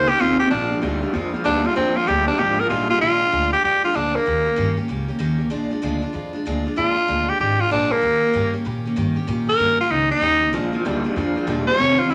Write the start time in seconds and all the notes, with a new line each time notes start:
Already playing: C5
0.07 D#3 A#3 C#4 G4
0.19 D#2 D#3 A#3 C4 C#4 F4 G4
0.39 D#3 A#3 C4 C#4 G4
0.50 A#1 A#2 F3 G#3 D4 F4
0.71 A#2 F3 G#3 D4 F4
0.82 D2 A#2 F3 G3 G#3 D4 F4
1.01 A#2 G3 G#3 D4 F4
1.13 F2 A#2 F3 G#3 D4 F4
1.34 A#2 F3 G#3 D4 F4
1.44 D2 A#2 F3 G3 G#3 D4 F4
1.63 A#2 G3 G#3 D4 F4
1.75 F2 A#2 F3 G#3 C4 D4 F4
1.95 A#2 F3 G#3 D4 F4
2.07 D2 A#2 F3 G3 G#3 D4 F4 G4
2.27 A#2 G3 G#3 D4 F4
2.38 G#1 A#2 F3 G#3 D4 F4 G4
2.58 A#2 F3 G#3 D4 F4 A#4
2.69 A#1 A#2 F3 G3 G#3 D4 F4
2.90 A#2 G3 G#3 D4 F4
3.01 A#1 A#2 F3 G#3 D4 F4
3.21 G#3 D4 F4
3.31 D2 A#2 F3 G#3 D4 F4
3.52 G#3 D4 F4 G4
3.63 F2 F3 G#3 D4 F4 G4
3.83 G#3 D4 F4
3.93 D2 A#2 F3 G#3 D4 F4
4.14 G#3 A#3 D4 F4
4.26 D#2 D#3 A#3 C#4 G4
4.46 A#3 C#4 G4
4.56 G2 D#3 A#3 C#4 G4
4.77 A#3 C#4 G4
4.88 C#2 D#3 A#3 C#4 G4
5.08 A#3 C#4 G4
5.19 D#2 D#3 A#3 C#4 G4
5.38 A#3 C#4 G4
5.50 A#1 A#2 F3 G#3 D4 F4
5.70 G#3 D4 F4
5.82 D2 A#2 F3 G#3 D4 F4
6.02 G#3 D4 F4
6.13 F2 F3 G#3 D4 F4
6.33 G#3 D4 F4
6.46 D2 A#2 F3 G#3 D4 F4
6.66 G#3 D4 F4
6.76 F2 A#2 F3 G#3 D4 F4
6.97 G#3 F4
7.08 D2 A#2 F3 G#3 D4 F4
7.28 G#3 D4 F4 G4
7.39 G#1 F3 G#3 D4 F4 G4
7.59 G#3 D4 F4
7.70 A#1 A#2 F3 G#3 D4 F4
7.90 G#3 A#3 D4 F4
8.01 D#2 D#3 A#3 C#4 G4
8.22 A#3 C#4 G4
8.33 G2 D#3 A#3 C#4 G4
8.54 A#3 C#4 G4
8.65 A#2 D#3 A#3 C#4 G4
8.85 A#3 C#4 G4
8.96 G2 D#3 A#3 C#4 G4
9.16 A#3 C#4 G4
9.27 A#2 D#3 A#3 C#4 G4
9.47 A#3 C#4 G4 A#4
9.59 G2 D#3 A#3 C#4 G4
9.79 A#3 C#4 F4 G4
9.90 C#2 D#3 A#3 C#4 D#4 G4
10.10 A#3 C#4 D#4 G4
10.21 D#2 D#3 A#3 C#4 G4
10.41 A#3 C#4 G4
10.53 A#1 A#2 F3 G#3 D4 F4
10.73 A#2 F3 G#3 D4 F4
10.85 D2 A#2 F3 G3 G#3 D4 F4
11.04 A#2 G3 G#3 D4 F4
11.16 F2 A#2 F3 G#3 D4 F4
11.36 A#2 F3 G#3 D4 F4
11.47 E1 A#2 F3 G3 G#3 D4 F4
11.67 A#2 G3 G#3 D4 F4 C#5
11.79 F1 F2 C3 D#3 A3 D#4 F4
11.98 F2 C3 D#3 A3 F4
12.10 A1 F2 C3 D3 D#3 A3 D#4 E4 F4